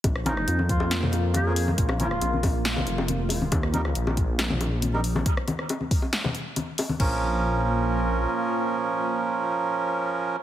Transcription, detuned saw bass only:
X:1
M:4/4
L:1/8
Q:1/4=138
K:Bbm
V:1 name="Detuned saw bass" clef=bass
B,,,2 F,,6 | B,,,2 B,,,3 F,,,3 | E,,2 B,,,6 | z8 |
B,,,6 z2 | z8 |]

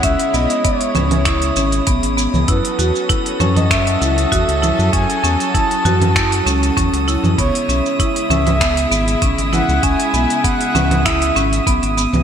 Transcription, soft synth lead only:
X:1
M:4/4
L:1/16
Q:"Swing 16ths" 1/4=98
K:C#m
V:1 name="Soft synth lead"
e2 d2 c8- c2 z2 | B6 c d e6 e2 | g4 a6 z6 | c4 z2 e6 z2 f2 |
g4 f4 e4 z4 |]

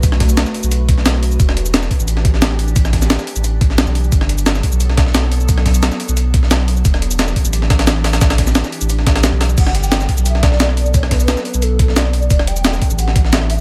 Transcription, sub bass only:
X:1
M:4/4
L:1/16
Q:1/4=176
K:G
V:1 name="Sub bass" clef=bass
B,,,4- B,,, z2 B,,,8- B,,, | E,,,6 z A,,,8- A,,,- | A,,,4- A,,, z2 A,,,4- A,,, B,,, B,,,3 | G,,,6 z B,,,8- B,,,- |
B,,,4- B,,, z2 B,,,8- B,,, | E,,,6 z A,,,8- A,,,- | A,,,4- A,,, z2 A,,,4- A,,, B,,, B,,,3 | G,,,6 z B,,,8- B,,,- |
B,,,4- B,,, z2 B,,,8- B,,, | E,,,6 z A,,,8- A,,, |]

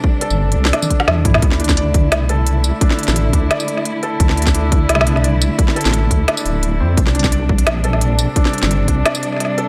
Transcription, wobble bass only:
X:1
M:4/4
L:1/16
Q:"Swing 16ths" 1/4=173
K:Cmix
V:1 name="Wobble bass" clef=bass
z3 G,,,3 C,,2 z4 E,,4 | D,,6 D,,2 C,,6- C,, z | z3 A,,,3 D,,2 z8 | D,,6 D,,2 C,,6- C,, z |
z3 A,,,3 D,,2 z2 D,,,4 F,,2 | C,,6 C,,2 B,,,6- B,,, z | z3 G,,,3 C,,2 z8 |]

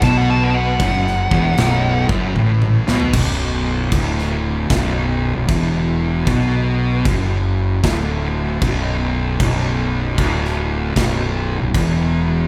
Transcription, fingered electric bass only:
X:1
M:4/4
L:1/16
Q:"Swing" 1/4=77
K:Bm
V:1 name="Fingered electric bass" clef=bass
B,,,4 F,,,2 E,,,2 B,,,,2 F,,,2 A,,,2 B,,,2 | B,,,,4 D,,,4 B,,,,3 B,,,, E,,,4 | B,,,4 F,,,4 D,,,4 B,,,,4 | B,,,,4 D,,,4 B,,,,3 B,,,, E,,,4 |]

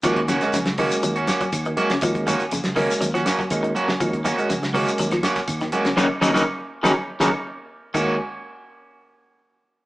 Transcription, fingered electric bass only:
X:1
M:4/4
L:1/16
Q:1/4=122
K:Ebm
V:1 name="Fingered electric bass" clef=bass
E,,3 z B,,, D,,2 z E,,2 z2 E,,2 z2 | E,,3 z B,,, D,,2 z E,,2 z2 E,,2 z2 | E,,3 z B,,, D,,2 z E,,2 z2 E,,2 z2 | E,, z E,, E,, z3 E,, z2 E,, z4 z |
E,,2 z12 z2 |]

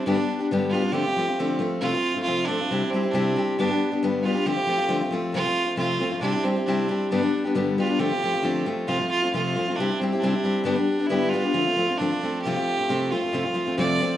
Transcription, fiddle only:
X:1
M:4/4
L:1/8
Q:1/4=136
K:Flyd
V:1 name="Fiddle"
D2 z F G3 z | F2 F D2 C D2 | D2 z F G3 z | F2 F2 D C D2 |
D2 z F G3 z | F F F2 D C D2 | D2 E F3 D2 | G3 F3 d2 |]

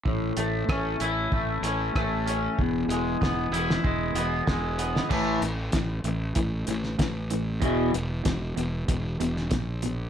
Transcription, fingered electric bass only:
X:1
M:4/4
L:1/8
Q:1/4=95
K:A
V:1 name="Fingered electric bass" clef=bass
A,,, A,,, A,,, A,,, A,,, A,,, A,,,2 | E,,, E,,, E,,, E,,, E,,, E,,, E,,,2 | A,,, A,,, A,,, A,,, A,,, A,,, A,,,2 | E,,, E,,, E,,, E,,, E,,, E,,, _B,,,2 |]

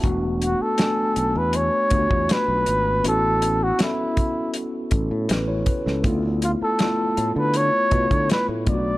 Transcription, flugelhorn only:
X:1
M:4/4
L:1/16
Q:1/4=80
K:Emix
V:1 name="Flugelhorn"
z2 F A4 B c4 B4 | A3 F E4 z8 | z2 =F A4 B c4 B2 d2 |]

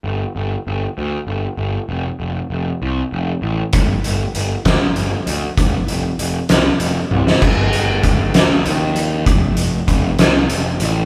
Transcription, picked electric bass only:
X:1
M:6/8
L:1/8
Q:3/8=65
K:Fmix
V:1 name="Picked electric bass" clef=bass
G,,, G,,, G,,, D,, G,,, G,,, | F,,, F,,, F,,, C,, F,,, A,,, | G,,, G,,, G,,, D,, G,,, D,, | F,,, F,,, F,,, C,, F,,, C,, |
G,,, G,,, G,,, D,, E,,2 | F,,,2 F,,, C,, F,,, A,,, |]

